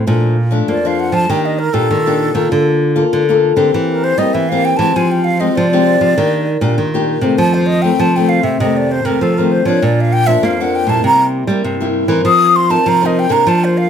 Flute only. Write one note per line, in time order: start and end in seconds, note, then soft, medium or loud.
0.69 0.88 D5 medium
0.87 1.01 F5 medium
1.00 1.15 F#5 medium
1.14 1.32 A5 loud
1.30 1.47 G5 medium
1.45 1.60 D#5 medium
1.59 1.75 A#4 medium
1.73 2.66 A4 medium
3.90 4.05 A#4 medium
4.04 4.20 C5 loud
4.18 4.35 D#5 medium
4.34 4.51 E5 medium
4.49 4.66 F5 medium
4.65 4.78 G5 loud
4.77 4.97 A5 loud
4.96 5.13 G#5 medium
5.11 5.26 G5 medium
5.24 5.42 F5 loud
5.40 5.57 D#5 medium
5.56 6.78 D5 medium
7.39 7.55 A5 loud
7.54 7.68 C5 medium
7.67 7.84 D#5 loud
7.82 8.02 G5 loud
8.00 8.18 A5 loud
8.16 8.30 G5 medium
8.29 8.45 F5 loud
8.44 8.62 E5 medium
8.60 8.78 D#5 medium
8.77 8.93 D5 medium
8.91 9.07 C5 medium
9.05 9.24 A#4 medium
9.23 9.39 A4 medium
9.38 9.53 A#4 medium
9.52 9.67 C5 medium
9.66 9.85 C#5 medium
9.83 10.02 D5 medium
10.01 10.14 F5 medium
10.13 10.28 G5 loud
10.27 10.46 E5 medium
10.45 10.63 F5 medium
10.61 10.77 F#5 medium
10.75 10.91 G5 loud
10.90 11.04 A5 medium
11.06 11.24 A#5 loud
12.27 12.58 D#6 loud
12.56 12.72 C6 loud
12.71 12.90 A5 loud
12.88 13.07 A#5 loud
13.06 13.21 D#5 medium
13.19 13.34 G5 loud
13.32 13.50 A#5 loud
13.48 13.66 A5 medium
13.64 13.79 C5 medium
13.78 13.90 F5 loud